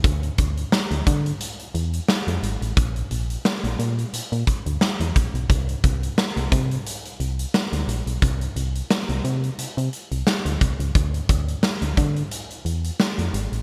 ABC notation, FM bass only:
X:1
M:4/4
L:1/16
Q:"Swing 16ths" 1/4=88
K:Cmix
V:1 name="FM bass" clef=bass
D,,2 D,,2 z D,, D,2 z2 E,,2 z F,, _A,,, =A,,, | B,,,2 B,,,2 z B,,, B,,2 B,, B,, z D,, z E,, B,,, =B,,, | C,,2 C,,2 z C,, C,2 z2 C,,2 z D,, B,,, =B,,, | C,,2 C,,2 z C,, C,2 C, C, z C,, z D,, C,, _D,, |
D,,2 D,,2 z D,, D,2 z2 E,,2 z F,, _A,,, =A,,, |]